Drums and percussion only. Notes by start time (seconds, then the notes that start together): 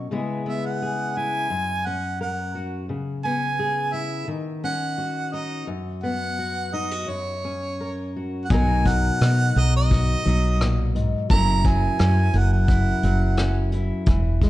8.50 kick, closed hi-hat
8.85 kick, closed hi-hat
9.21 cross-stick, closed hi-hat
9.57 closed hi-hat
9.91 kick, closed hi-hat
10.26 closed hi-hat
10.60 cross-stick, closed hi-hat
10.95 closed hi-hat
11.30 kick, closed hi-hat
11.65 kick, closed hi-hat
11.99 cross-stick, closed hi-hat
12.33 closed hi-hat
12.68 kick, closed hi-hat
13.03 closed hi-hat
13.37 cross-stick, closed hi-hat
13.72 closed hi-hat
14.06 kick, closed hi-hat
14.41 kick, closed hi-hat